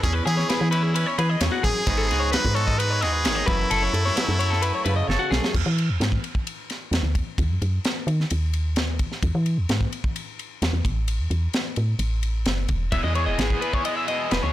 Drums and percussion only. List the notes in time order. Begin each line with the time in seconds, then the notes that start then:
0.04 kick, ride
0.27 ride
0.39 snare
0.49 snare, ride
0.72 ride
0.96 ride
1.19 ride
1.41 snare, ride
1.64 kick, ride
1.87 kick, ride
2.11 snare, ride
2.33 snare, ride
2.45 kick
2.56 ride
2.68 kick
2.80 ride
3.02 snare, ride
3.25 snare, ride
3.48 kick, ride
3.71 ride
3.94 ride
4.07 snare
4.17 snare, ride
4.40 ride
4.53 snare
4.62 ride
4.86 ride
5.10 snare
5.32 snare
5.44 snare
5.55 kick, crash
5.78 ride
6.01 snare, ride
6.12 kick
6.24 ride
6.35 kick
6.47 ride
6.70 snare, ride
6.93 snare, ride
7.15 kick, ride
7.38 kick, ride
7.62 ride
7.85 snare, ride
8.08 ride
8.20 snare
8.30 ride
8.53 ride
8.76 snare, ride
8.99 kick, ride
9.12 snare
9.23 kick, ride
9.46 ride
9.69 snare, ride
9.81 kick
9.92 ride
10.04 kick
10.16 ride
10.39 ride
10.62 snare, ride
10.85 kick, ride
11.08 ride
11.31 ride
11.53 snare, ride
11.76 ride
11.99 ride
12.23 ride
12.46 snare, ride
12.68 kick, ride
12.92 kick, ride
13.15 ride
13.39 snare, ride
13.50 kick
13.62 ride
13.73 kick
13.85 ride
14.08 ride
14.31 snare, ride